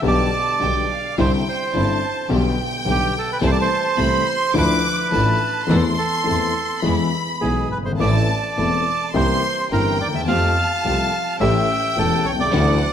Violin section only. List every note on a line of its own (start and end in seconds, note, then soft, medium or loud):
0.04 0.61 A5 medium
0.62 0.90 G5 medium
0.91 1.16 F5 medium
1.19 1.75 G5 medium
1.76 2.27 A5 medium
2.31 3.43 G5 loud
3.43 3.99 A5 medium
3.99 4.27 B5 medium
4.27 4.55 C6 loud
4.54 5.08 D6 loud
5.12 5.66 A5 medium
5.68 6.83 C6 loud
6.82 7.70 B5 medium
7.98 8.53 A5 medium
8.56 9.10 A5 medium
9.13 9.67 C6 loud
9.71 10.24 G5 medium
10.28 11.40 A5 loud
11.41 12.49 G5 loud
12.54 12.93 F#5 medium